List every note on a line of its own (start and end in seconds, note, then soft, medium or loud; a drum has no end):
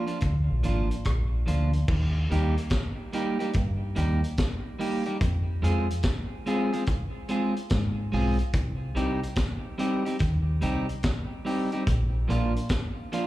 0.07 0.18 F3 medium
0.07 0.18 A#3 medium
0.07 0.17 D4 medium
0.07 0.17 F4 medium
0.07 closed hi-hat soft
0.20 0.47 D2 loud
0.20 kick loud
0.20 closed hi-hat medium
0.51 0.63 A#1 medium
0.63 0.90 G#1 medium
0.63 0.87 F3 medium
0.63 0.87 A#3 medium
0.63 0.88 D4 medium
0.63 0.88 F4 medium
0.63 closed hi-hat medium
0.91 closed hi-hat soft
1.05 1.44 A#1 medium
1.05 kick loud
1.05 cross-stick loud
1.05 closed hi-hat medium
1.46 1.86 D2 medium
1.46 1.70 F3 medium
1.46 1.70 A#3 medium
1.46 1.71 D4 medium
1.46 1.71 F4 medium
1.46 closed hi-hat medium
1.73 closed hi-hat medium
1.88 2.27 D#2 loud
1.88 kick loud
1.88 crash loud
2.30 2.56 D#2 medium
2.30 2.53 G3 medium
2.30 2.54 A#3 medium
2.30 2.54 D#4 medium
2.30 2.55 G4 medium
2.30 closed hi-hat medium
2.57 closed hi-hat medium
2.70 kick loud
2.70 snare loud
2.70 closed hi-hat medium
3.13 3.36 G3 medium
3.13 3.37 A#3 medium
3.13 3.37 D#4 loud
3.13 3.37 G4 loud
3.13 closed hi-hat medium
3.39 3.51 G3 medium
3.39 3.50 A#3 medium
3.39 3.50 D#4 medium
3.39 3.50 G4 medium
3.39 closed hi-hat medium
3.53 3.94 G2 loud
3.53 kick loud
3.53 closed hi-hat medium
3.95 4.22 D#2 loud
3.95 4.19 G3 medium
3.95 4.20 A#3 medium
3.95 4.20 D#4 medium
3.95 4.20 G4 medium
3.95 closed hi-hat medium
4.24 closed hi-hat medium
4.37 kick loud
4.37 snare loud
4.37 closed hi-hat medium
4.79 5.03 G3 medium
4.79 5.03 A#3 medium
4.79 5.03 D#4 medium
4.79 5.04 G4 medium
4.79 open hi-hat medium
5.06 5.17 G3 medium
5.06 5.17 A#3 medium
5.06 5.17 D#4 medium
5.06 5.16 G4 medium
5.06 closed hi-hat medium
5.21 5.60 F2 loud
5.21 kick loud
5.21 closed hi-hat loud
5.62 5.88 F2 loud
5.62 5.86 G#3 medium
5.62 5.86 C4 medium
5.62 5.87 F4 medium
5.62 5.87 G#4 medium
5.62 closed hi-hat medium
5.91 closed hi-hat medium
6.03 kick loud
6.03 snare loud
6.03 closed hi-hat medium
6.46 6.70 G#3 medium
6.46 6.70 C4 medium
6.46 6.70 F4 medium
6.46 6.70 G#4 loud
6.46 closed hi-hat medium
6.73 6.84 G#3 medium
6.73 6.83 C4 medium
6.73 6.83 F4 medium
6.73 6.83 G#4 medium
6.73 closed hi-hat medium
6.86 kick loud
6.86 closed hi-hat medium
7.29 7.52 G#3 medium
7.29 7.53 C4 medium
7.29 7.53 F4 medium
7.29 7.54 G#4 medium
7.29 closed hi-hat medium
7.56 closed hi-hat medium
7.70 8.10 G#2 loud
7.70 kick loud
7.70 snare loud
7.70 closed hi-hat medium
8.12 8.38 B1 medium
8.12 8.36 G#3 medium
8.12 8.36 C4 medium
8.12 8.37 F4 medium
8.12 8.37 G#4 medium
8.12 open hi-hat medium
8.39 closed hi-hat medium
8.53 8.93 C2 loud
8.53 kick loud
8.53 closed hi-hat loud
8.95 9.21 C2 loud
8.95 9.19 G3 medium
8.95 9.19 C4 medium
8.95 9.20 D#4 medium
8.95 9.20 G4 loud
8.95 closed hi-hat medium
9.23 closed hi-hat medium
9.36 kick loud
9.36 snare loud
9.36 closed hi-hat medium
9.78 10.02 G3 medium
9.78 10.02 C4 medium
9.78 10.03 D#4 medium
9.78 10.03 G4 loud
9.78 closed hi-hat medium
10.05 10.16 G3 medium
10.05 10.16 C4 medium
10.05 10.16 D#4 medium
10.05 10.16 G4 medium
10.05 closed hi-hat medium
10.19 10.59 D#2 loud
10.19 kick loud
10.19 closed hi-hat medium
10.61 10.88 C2 medium
10.61 10.85 G3 medium
10.61 10.86 C4 medium
10.61 10.86 D#4 medium
10.61 10.86 G4 medium
10.61 closed hi-hat medium
10.89 closed hi-hat medium
11.03 kick loud
11.03 snare loud
11.03 closed hi-hat medium
11.45 11.69 G3 medium
11.45 11.69 C4 medium
11.45 11.69 D#4 medium
11.45 11.69 G4 medium
11.45 open hi-hat medium
11.72 11.84 G3 medium
11.72 11.83 C4 medium
11.72 11.83 D#4 medium
11.72 11.83 G4 medium
11.72 closed hi-hat medium
11.87 12.26 A#1 loud
11.87 kick loud
11.87 closed hi-hat loud
12.28 12.55 A#1 loud
12.28 12.52 F3 medium
12.28 12.52 A#3 medium
12.28 12.53 D4 medium
12.28 12.53 F4 medium
12.28 closed hi-hat medium
12.56 closed hi-hat medium
12.69 kick loud
12.69 snare loud
12.69 closed hi-hat loud
13.12 13.27 F3 medium
13.12 13.27 A#3 medium
13.12 13.27 D4 loud
13.12 13.27 F4 loud
13.12 closed hi-hat medium